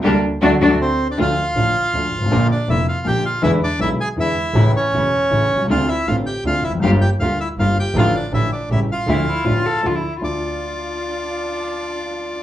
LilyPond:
<<
  \new Staff \with { instrumentName = "Bandoneon" } { \time 3/4 \key d \phrygian \tempo 4 = 160 r2 <c' c''>8. <d' d''>16 | \key d \minor <f' f''>2.~ | <f' f''>8 <d' d''>8 <e' e''>8 <f' f''>8 <g' g''>8 <f' f''>8 | <e' e''>8 <d' d''>8 <e' e''>8 <gis' gis''>8 <e' e''>4~ |
<e' e''>8 <cis' cis''>2~ <cis' cis''>8 | <f' f''>8 <e' e''>8 <f' f''>8 <g' g''>8 <f' f''>8 <e' e''>8 | <f' f''>8 <g' g''>8 <f' f''>8 <e' e''>8 <f' f''>8 <g' g''>8 | <f' f''>8 <d' d''>8 <e' e''>8 <d' d''>8 <e' e''>8 <f' f''>8~ |
<f' f''>2 r4 | d''2.~ | d''2. | }
  \new Staff \with { instrumentName = "Cello" } { \time 3/4 \key d \phrygian d'8 r8 d'8 d'8 r4 | \key d \minor r2. | r2. | r2. |
r2. | r2. | r2. | r2. |
r8 e'8 f'8 a'8 f'16 e'8. | f'2.~ | f'2. | }
  \new Staff \with { instrumentName = "String section" } { \time 3/4 \key d \phrygian <bes d' g'>8 r8 <a d' fis'>8 <a d' fis'>8 r4 | \key d \minor <a d' f'>8 r8 <a d' f'>8 r8 <a d' f'>8 r8 | <bes d' f'>8 r8 <bes d' f'>8 r8 <bes d' f'>8 r8 | <gis d' e'>8 r8 <gis d' e'>8 r8 <gis d' e'>8 r8 |
<a cis' e'>8 r8 <a cis' e'>8 r8 <a cis' e'>8 r8 | <c' d' f'>8 r8 <c' d' f'>8 r8 <c' d' f'>8 r8 | <bes f' g'>8 r8 <bes f' g'>8 r8 <bes f' g'>8 r8 | <a d' f'>8 r8 <a d' f'>8 r8 <a cis' g'>8 r8 |
<f d' e'>8 r8 <f d' e'>8 r8 <f d' e'>8 r8 | <d' f'>2.~ | <d' f'>2. | }
  \new Staff \with { instrumentName = "Grand piano" } { \clef bass \time 3/4 \key d \phrygian <d g bes>8 r8 <d fis a>8 <d fis a>8 r4 | \key d \minor <d, d f a f'>8 r8 <a,, a, d f a f'>8 r8 <d, d f a f'>8 r32 g,,32 gis,,32 a,,32 | <bes,, bes, d f bes f'>8 r8 <f,, f, d f bes f'>8 r8 <bes,, bes, d f bes f'>8 r8 | <e, d e gis b e'>8 r8 <b,, b, d gis b e'>8 r8 <e, d e gis b e'>8 r8 |
<a,, a, cis e a e'>8 r8 <e,, e, cis e a e'>8 r8 <a,, a, cis e a e'>8 r32 b,,32 c,32 cis,32 | <d, d a c' f'>8 r8 <a,, a, d a c' f'>8 r8 <d, d a c' f'>8 r32 e,32 f,32 fis,32 | <g,, g, d g bes f'>8 r8 <d, d g bes f'>8 r8 <g,, g, d g bes f'>8 r8 | <a,, a, d f a f'>8 r8 <a,, a, d f a f'>8 r8 <a,, a, cis g a e'>8 r8 |
<d, d f a e'>8 r8 <a,, a, d f a e'>8 r8 <d, d f a e'>8 r8 | <d, d' f' e''>2.~ | <d, d' f' e''>2. | }
  \new Staff \with { instrumentName = "Double bass" } { \clef bass \time 3/4 \key d \phrygian d,8 r8 d,8 d,8 r4 | \key d \minor d,8 r8 a,,8 r8 d,8 gis,,8 | bes,,8 r8 f,,8 r8 bes,,8 r8 | e,8 r8 b,,8 r8 e,8 r8 |
a,,8 r8 e,,8 r8 a,,8 c,8 | d,8 r8 a,,8 r8 d,8 f,,8 | g,,8 r8 d,8 r8 g,,8 r8 | a,,8 r8 a,,8 r8 a,,8 r8 |
d,8 r8 a,,8 r8 d,8 r8 | d,8 r2 r8 | r2. | }
>>